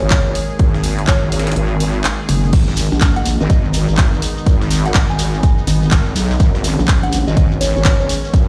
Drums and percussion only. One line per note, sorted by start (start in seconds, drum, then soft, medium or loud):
0.11 kick loud
0.11 snare loud
0.11 clap loud
0.11 closed hi-hat medium
0.35 closed hi-hat medium
0.35 open hi-hat loud
0.59 kick loud
0.59 closed hi-hat medium
0.74 snare medium
0.84 closed hi-hat medium
0.84 open hi-hat loud
0.99 closed hi-hat soft
1.07 kick loud
1.07 snare loud
1.07 clap loud
1.07 closed hi-hat medium
1.32 closed hi-hat medium
1.32 open hi-hat loud
1.39 snare medium
1.39 closed hi-hat medium
1.47 snare medium
1.47 closed hi-hat medium
1.52 snare medium
1.52 closed hi-hat medium
1.56 closed hi-hat medium
1.80 open hi-hat loud
2.04 snare loud
2.04 clap loud
2.04 closed hi-hat medium
2.29 closed hi-hat medium
2.29 open hi-hat loud
2.44 snare soft
2.53 kick loud
2.53 closed hi-hat medium
2.53 crash medium
2.53 shekere medium
2.68 snare soft
2.68 shekere soft
2.77 closed hi-hat medium
2.77 open hi-hat loud
2.77 shekere loud
2.92 shekere soft
3.01 kick loud
3.01 snare loud
3.01 clap loud
3.01 closed hi-hat medium
3.01 shekere medium
3.16 closed hi-hat soft
3.16 shekere soft
3.25 closed hi-hat medium
3.25 open hi-hat loud
3.25 shekere medium
3.41 shekere soft
3.50 kick loud
3.50 closed hi-hat medium
3.50 shekere medium
3.65 shekere soft
3.73 open hi-hat medium
3.73 open hi-hat loud
3.73 shekere medium
3.88 shekere soft
3.98 kick loud
3.98 snare loud
3.98 clap loud
3.98 closed hi-hat medium
3.98 shekere medium
4.13 shekere soft
4.22 closed hi-hat medium
4.22 open hi-hat loud
4.22 shekere medium
4.37 shekere soft
4.46 kick loud
4.46 closed hi-hat medium
4.46 shekere medium
4.61 snare medium
4.61 shekere soft
4.71 closed hi-hat medium
4.71 open hi-hat loud
4.71 shekere loud
4.86 closed hi-hat soft
4.86 shekere soft
4.94 kick loud
4.94 snare loud
4.94 clap loud
4.94 closed hi-hat medium
4.94 shekere soft
5.10 shekere soft
5.19 closed hi-hat medium
5.19 open hi-hat loud
5.19 shekere loud
5.34 shekere soft
5.43 kick loud
5.43 closed hi-hat medium
5.43 shekere medium
5.58 shekere soft
5.67 closed hi-hat medium
5.67 open hi-hat loud
5.67 shekere medium
5.82 shekere soft
5.91 kick loud
5.91 snare loud
5.91 clap loud
5.91 closed hi-hat medium
5.91 shekere medium
6.06 shekere soft
6.16 closed hi-hat medium
6.16 open hi-hat loud
6.16 shekere medium
6.31 snare soft
6.31 shekere soft
6.40 kick loud
6.40 closed hi-hat medium
6.40 shekere medium
6.55 snare medium
6.55 shekere soft
6.64 closed hi-hat medium
6.64 open hi-hat loud
6.64 shekere medium
6.79 shekere soft
6.88 kick loud
6.88 snare loud
6.88 clap loud
6.88 closed hi-hat medium
6.88 shekere medium
7.03 closed hi-hat soft
7.03 shekere soft
7.12 closed hi-hat medium
7.12 open hi-hat loud
7.12 shekere medium
7.28 shekere soft
7.37 kick loud
7.37 closed hi-hat medium
7.37 shekere medium
7.51 shekere soft
7.61 open hi-hat loud
7.61 open hi-hat medium
7.61 shekere loud
7.76 shekere soft
7.85 kick loud
7.85 snare loud
7.85 clap loud
7.85 closed hi-hat medium
7.85 shekere medium
8.00 shekere soft
8.09 closed hi-hat medium
8.09 open hi-hat loud
8.09 shekere medium
8.24 shekere soft
8.33 kick loud
8.33 closed hi-hat medium
8.33 shekere medium